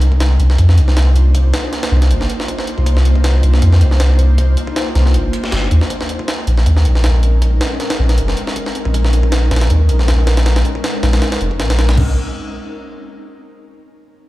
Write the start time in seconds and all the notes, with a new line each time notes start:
Already playing: C2
0.02 closed hi-hat
0.12 kick
0.20 snare, closed hi-hat
0.39 C2 A#3 D4 D#4 F4 C5, closed hi-hat
0.50 snare
0.58 F2, kick, closed hi-hat
0.69 snare
0.77 C2, closed hi-hat
0.88 snare
0.97 snare, closed hi-hat
1.16 closed hi-hat
1.35 kick, closed hi-hat
1.54 snare, closed hi-hat
1.73 snare, closed hi-hat
1.83 snare, closed hi-hat
1.92 C2
2.02 snare, closed hi-hat
2.10 G1, closed hi-hat
2.21 snare
2.30 closed hi-hat
2.40 snare
2.48 kick, closed hi-hat
2.59 snare
2.67 closed hi-hat
2.78 C2, kick
2.86 kick, closed hi-hat
2.97 snare
3.05 closed hi-hat
3.16 kick
3.24 snare, closed hi-hat
3.43 C2 A#3 D4 D#4 F4 C5, closed hi-hat
3.54 snare
3.62 F2, kick, closed hi-hat
3.72 snare
3.81 C2, closed hi-hat
3.91 snare
4.00 snare, closed hi-hat
4.19 closed hi-hat
4.38 kick, closed hi-hat
4.57 closed hi-hat
4.67 kick
4.76 snare, closed hi-hat
4.95 C2, snare, closed hi-hat
5.06 snare
5.14 G1, closed hi-hat
5.33 closed hi-hat
5.44 snare
5.52 G1, snare, closed hi-hat
5.71 D#2, closed hi-hat
5.81 snare
5.90 kick, closed hi-hat
6.01 snare
6.09 closed hi-hat
6.19 kick
6.28 snare, closed hi-hat
6.47 A#1 G#3 C4 C#4 D#4 A#4, closed hi-hat
6.58 snare
6.66 D#2, kick, closed hi-hat
6.77 snare
6.85 A#1, closed hi-hat
6.95 snare
7.04 snare, closed hi-hat
7.23 closed hi-hat
7.42 kick, closed hi-hat
7.61 snare, closed hi-hat
7.80 snare, closed hi-hat
7.90 snare, closed hi-hat
7.99 A#1
8.09 snare, closed hi-hat
8.18 F1, closed hi-hat
8.28 snare
8.37 closed hi-hat
8.47 snare
8.56 kick, closed hi-hat
8.66 snare
8.75 closed hi-hat
8.85 A#1, kick
8.94 kick, closed hi-hat
9.05 snare
9.13 closed hi-hat
9.23 kick
9.32 snare, closed hi-hat
9.51 A#1 G#3 C4 C#4 D#4 A#4, snare, closed hi-hat
9.56 snare, closed hi-hat
9.61 snare, closed hi-hat
9.70 D#2, kick, closed hi-hat
9.89 A#1, closed hi-hat
9.99 snare
10.08 snare, closed hi-hat
10.27 snare, closed hi-hat
10.37 snare, closed hi-hat
10.46 snare, closed hi-hat
10.56 snare, closed hi-hat
10.65 closed hi-hat
10.75 kick
10.84 snare, closed hi-hat
11.03 A#1, snare, closed hi-hat
11.13 snare, closed hi-hat
11.22 snare, closed hi-hat
11.32 snare, closed hi-hat
11.41 F1, closed hi-hat
11.51 kick
11.60 A#1, snare, closed hi-hat
11.70 snare, closed hi-hat
11.79 snare, closed hi-hat
11.89 snare, closed hi-hat
11.97 C2, kick, crash